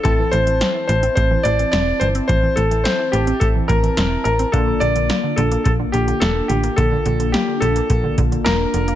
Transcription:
<<
  \new Staff \with { instrumentName = "Grand piano" } { \time 4/4 \key a \phrygian \tempo 4 = 107 a'8 c''4 c''8 c''8 d''8 d''8 c''8 | c''8 a'8 c''8 g'8 a'8 bes'4 bes'8 | a'8 d''4 a'8 a'8 g'8 a'8 g'8 | a'4 g'8 a'4 r8 bes'4 | }
  \new Staff \with { instrumentName = "Analog polysynth" } { \time 4/4 \key a \phrygian <c' e' a''>1~ | <c' e' a''>1 | <bes d' f'>1~ | <bes d' f'>1 | }
  \new Staff \with { instrumentName = "Synth arpeggio sound" } { \clef bass \time 4/4 \key a \phrygian e16 e16 e16 e16 c'16 e16 e16 c'16 r16 e16 e16 e16 c'16 r16 e16 c'16 | e16 e16 e16 e16 c'16 e16 e16 c'16 r16 e16 e16 e16 c'16 r16 e16 c'16 | d16 d16 d16 d16 bes16 d16 d16 bes16 r16 d16 d16 d16 bes16 r16 d16 bes16 | d16 d16 d16 d16 bes16 d16 d16 bes16 r16 d16 d16 d16 bes16 r16 d16 bes16 | }
  \new Staff \with { instrumentName = "FM bass" } { \clef bass \time 4/4 \key a \phrygian a,,8 a,,8. r16 a,,8 a,,8 a,,8 e,,8 g,,8 | a,,8 a,,8. r16 a,,8 a,,8 a,,8 e,,8 a,,8 | bes,,8 bes,,8. r16 bes,,8 bes,,8 bes,,8 e,,8 a,,8 | bes,,8 bes,,8. r16 bes,,8 bes,,8 bes,,8 e,,8 f,,8 | }
  \new DrumStaff \with { instrumentName = "Drums" } \drummode { \time 4/4 <hh bd>8 hh16 hh16 <hh sn>8 hh16 hh16 <hh bd>8 hh16 hh16 <hh sn>8 hh16 hh16 | <hh bd>8 hh16 hh16 <hh sn>8 hh16 hh16 <hh bd>8 <hh bd>16 hh16 <hh sn>8 hh16 hh16 | <hh bd>8 hh16 hh16 <hh sn>8 hh16 hh16 <hh bd>8 hh16 hh16 <hh sn>8 hh16 hh16 | <hh bd>8 hh16 hh16 <hh sn>8 hh16 hh16 <hh bd>8 <hh bd>16 hh16 <hh sn>8 hh16 hh16 | }
>>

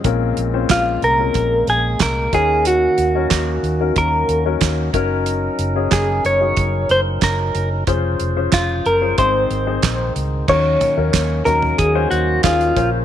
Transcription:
<<
  \new Staff \with { instrumentName = "Clean electric guitar" } { \time 4/4 \key ees \dorian \tempo 4 = 92 r4 f'8 bes'4 aes'8 bes'8 aes'8 | ges'2 bes'4 r4 | r4 aes'8 des''4 c''8 bes'8. r16 | r4 f'8 bes'8 c''4. r8 |
des''4. bes'8 aes'8 ges'8 f'8. r16 | }
  \new Staff \with { instrumentName = "Grand piano" } { \time 4/4 \key ees \dorian <c' des' f' bes'>8 r16 <c' des' f' c''>8. r16 <c' des' f' bes'>4. r16 <des' ees' ges' bes'>8~ | <des' ees' ges' bes'>8 r16 <des' ees' ges' bes'>8. r16 <des' ees' ges' bes'>8. r16 <des' ees' ges' bes'>8. <des' ees' ges' bes'>8~ | <des' ees' ges' bes'>8 r16 <des' ees' ges' aes'>8. r16 <des' ees' ges' aes'>4. r8. | <des' f' aes' c''>8 r16 <des' f' aes' c''>8. r16 <des' f' aes' c''>16 <c' ees' aes' c''>8 r16 <c' ees' aes' c''>4 r16 |
<des' ees' ges' bes'>8 r16 <des' ees' ges' bes'>8 r16 <des' ees' ges' bes'>8 r16 <des' ees' ges' c''>8 r16 <ges des' ees' aes'>8 <des' f' bes' c''>8 | }
  \new Staff \with { instrumentName = "Grand piano" } { \clef bass \time 4/4 \key ees \dorian bes,4. r2 ees8~ | ees4 r2. | r1 | r2 aes,4. r8 |
ees4. r2 bes,8 | }
  \new Staff \with { instrumentName = "Tonewheel organ" } { \time 4/4 \key ees \dorian <bes, aes bes>2.~ <bes, aes bes>8 <ees des' ges'>8~ | <ees des' ges'>2.~ <ees des' ges'>8 <ges des' ees' bes'>8~ | <ges des' ees' bes'>1 | <des f c''>2 <ees aes c'>2 |
<ees ges bes des'>2.~ <ees ges bes des'>8 <des c''>8 | }
  \new Staff \with { instrumentName = "Fingered electric bass" } { \clef bass \time 4/4 \key ees \dorian bes,,8 bes,,8 bes,,8 c,8 bes,,8 bes,,8 c,8 ees,8~ | ees,8 ees,8 ees,8 ees,8 ees,8 ees,8 ees,8 ges,,8~ | ges,,8 ges,,8 ges,,8 ges,,8 ges,,8 ges,,8 ges,,8 ges,,8 | f,,8 f,,8 f,,8 ges,,8 aes,,8 aes,,8 bes,,8 des,8 |
ees,8 r16 ees,16 ees,8 ees,8 ees,8 ees,8 ees,8 bes,,8 | }
  \new DrumStaff \with { instrumentName = "Drums" } \drummode { \time 4/4 <hh bd>8 hh8 <hc hh bd sn>8 hh8 <hh bd>8 hh8 <hc hh bd sn>8 <hh bd>8 | hh8 hh8 <hc hh bd sn>8 hh8 <hh bd>8 hh8 <hc hh bd sn>8 <hh bd>8 | hh8 hh8 <hc hh bd sn>8 hh8 <hh bd>8 hh8 <hc hh bd sn>8 hh8 | <hh bd>8 hh8 <hc hh bd sn>8 hh8 <hh bd>8 hh8 <hc hh bd sn>8 hh8 |
<cymc bd>8 <hh tomfh>8 <hc hh bd sn>8 <hh tomfh>16 tomfh16 <hh bd>8 hh8 <hc hh bd sn>16 hh16 <hh bd>8 | }
>>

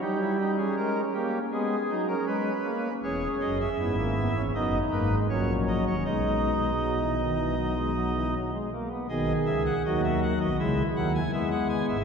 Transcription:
<<
  \new Staff \with { instrumentName = "Pipe organ" } { \time 4/4 \key gis \minor \tempo 4 = 80 << { g'8. gis'16 ais'8 g'8 gis'8. ais'16 b'4 | \key b \major cis''8 dis''16 e''4~ e''16 dis''8 b'8 cis''8 dis''16 cis''16 | dis''2.~ dis''8 r8 | dis''8 e''16 fis''16 dis''16 e''16 fis''16 dis''16 e''8 fis''16 gis''16 e''16 fis''16 gis''16 e''16 | } \\ { dis'16 e'16 dis'16 cis'4~ cis'16 b8 dis'16 cis'4~ cis'16 | gis'4 e'4 dis'4 cis'4 | dis'2.~ dis'8 r8 | gis'4 fis'4 e'4 b4 | } >> }
  \new Staff \with { instrumentName = "Pipe organ" } { \clef bass \time 4/4 \key gis \minor << { g4 gis8 ais8 gis8 fis8 gis8 ais8 | \key b \major cis'4 b16 ais16 b16 cis'16 b8 ais16 gis16 fis4 | gis4 fis16 e16 dis16 e16 fis16 gis16 fis16 e16 fis16 gis16 ais16 b16 | dis4 fis4 gis8 fis8 gis4 | } \\ { r1 | <e,, e,>8 <fis,, fis,>8 <gis,, gis,>8. <e,, e,>16 <fis,, fis,>8 <gis,, gis,>8 <ais,, ais,>8. <dis,, dis,>16 | <b,, b,>2.~ <b,, b,>8 r8 | <b,, b,>8 <cis, cis>8 <dis, dis>8. <b,, b,>16 <cis, cis>8 <dis, dis>8 <e, e>8. <gis,, gis,>16 | } >> }
>>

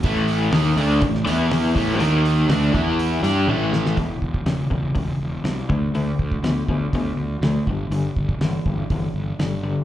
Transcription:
<<
  \new Staff \with { instrumentName = "Overdriven electric guitar" } { \time 4/4 \key e \minor \tempo 4 = 122 <a, e a>4 <dis ais dis'>8 <d a d'>8 <a, e>8 <e b e'>4 <a, e a>8 | <dis ais dis'>4 <d a d'>8 <e b e'>4 <g d' g'>8 <a, e a>4 | r1 | r1 |
r1 | }
  \new Staff \with { instrumentName = "Overdriven electric guitar" } { \clef bass \time 4/4 \key e \minor <a, e a>4 <dis ais dis'>8 <d a d'>8 <a, e>8 <e b e'>4 <a, e a>8 | <dis ais dis'>4 <d a d'>8 <e b e'>4 <g d' g'>8 <a, e a>4 | <e, b,>4 <e, cis>8 <e, cis>8 <e, cis>4 <e, b,>8 <d a>8 | <d a>4 <d b>8 <d b>8 <d b>4 <d a>8 <g, d>8 |
<g, d>4 <g, e>8 <g, e>8 <g, e>4 <g, d>8 <g, d>8 | }
  \new Staff \with { instrumentName = "Fingered electric bass" } { \clef bass \time 4/4 \key e \minor a,,4 dis,8 d,8 a,,8 e,4 a,,8 | dis,4 d,8 e,4 g,8 a,,4 | e,,8 e,,8 e,,8 e,,8 e,,8 e,,8 c,8 d,8 | d,8 d,8 d,8 d,8 d,8 d,8 d,8 g,,8 |
g,,8 g,,8 g,,8 g,,8 g,,8 g,,8 g,,4 | }
  \new DrumStaff \with { instrumentName = "Drums" } \drummode { \time 4/4 <hho bd>8 hho8 <hho sn>8 hho8 <hho bd>16 sn16 hho8 <hho sn>8 <hho bd>8 | hho8 hho8 <hho sn>8 <hho bd>8 hho8 hho8 tommh8 sn16 sn16 | <hho bd>8 bd16 bd16 <hho sn>8 bd8 <hho bd>4 <hho sn>8 bd8 | hho8 bd16 bd16 <hho sn>8 bd8 <hho bd>4 <hho sn>8 bd8 |
hho8 bd16 bd16 <hho sn>8 bd8 <hho bd>4 <hho sn>4 | }
>>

